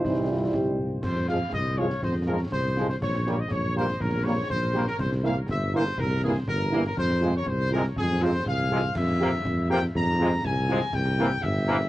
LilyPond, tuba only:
\new Staff \with { instrumentName = "Tuba" } { \clef bass \time 2/4 \key f \minor \tempo 4 = 121 c,4 c,4 | f,4 c,4 | f,4 c,4 | bes,,4 bes,,4 |
bes,,4 bes,,4 | c,4 g,,4 | c,4 g,,4 | f,4 c,4 |
f,4 c,4 | f,4 f,4 | f,4 c,4 | c,4 g,,4 | }